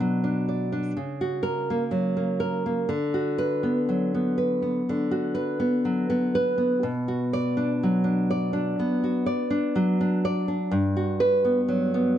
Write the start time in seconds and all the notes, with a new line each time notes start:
Already playing: B2 D4 F#4
0.00 F#3
0.24 D4
0.49 D5
0.72 D4
0.97 C#3
1.21 F#4
1.43 A#4
1.70 A#3
1.91 F#3
2.17 A#3
2.40 A#4
2.66 A#3
2.89 D3
3.14 F#4
3.38 B4
3.63 B3
3.89 F#3
4.15 B3
4.38 B4
4.62 B3
4.89 D3
5.11 F#4
5.35 B4
5.60 B3
5.85 F#3
6.10 B3
6.35 B4
6.58 B3
6.83 B2
7.08 F#4
7.33 D5
7.57 D4
7.83 F#3
8.04 D4
8.31 D5
8.53 D4
8.79 B3
9.04 F#4
9.26 D5
9.50 D4
9.76 F#3
10.01 D4
10.25 D5
10.48 D4
10.71 G2
10.97 F#4
11.20 B4
11.45 B3
11.69 F#3
11.94 B3